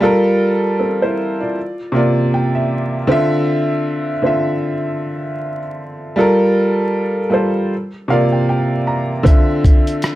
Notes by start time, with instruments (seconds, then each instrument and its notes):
0.00 upright piano G3 F4 A4
0.05 upright piano A#4
0.80 upright piano C4 A4
1.02 upright piano E4 C5
1.40 upright piano F4 D5
1.92 upright piano C3 A#3 F4
1.96 upright piano D5
2.34 upright piano G5
2.55 upright piano E5
3.07 upright piano D3 C4 F4
3.11 upright piano E5
4.22 upright piano D3 C4 F4
4.26 upright piano E5
6.16 upright piano G3 F4 A4
6.20 upright piano A#4
7.30 upright piano G3 F4 A4
7.34 upright piano C5
8.08 upright piano C3 A#3 F4 F5
8.12 upright piano D5
8.32 upright piano G5
8.49 upright piano G5
8.87 upright piano A#5
9.23 upright piano D3 C4 F4, kick, closed hi-hat
9.28 upright piano E5
9.64 kick, closed hi-hat
9.87 closed hi-hat
10.02 cross-stick, closed hi-hat